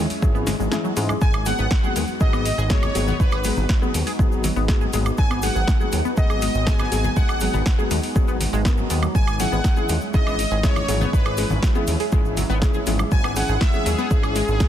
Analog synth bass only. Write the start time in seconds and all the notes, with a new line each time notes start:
0.22 G#1
0.60 G#1
0.97 G#2
1.22 G#1
1.59 G#1
1.96 D#2
2.21 G#1
2.58 G#1
2.95 G#1
3.20 G#1
3.57 G#1
3.94 D#2
4.19 G#1
4.56 G#1
4.94 G#1
5.18 G#1
5.56 G#1
5.93 D#2
6.17 G#1
6.55 G#1
6.92 G#1
7.17 G#1
7.54 G#1
7.91 D#2
8.16 G#1
8.53 G#1
8.90 D#2
9.15 G#1
9.52 G#1
9.89 D#2
10.14 G#1
10.51 G#1
10.88 G#1
11.13 G#1
11.50 G#1
11.88 D#2
12.12 G#1
12.50 G#1
12.87 G#1
13.12 G#1
13.49 G#1
13.86 D#2
14.11 G#1
14.48 G#1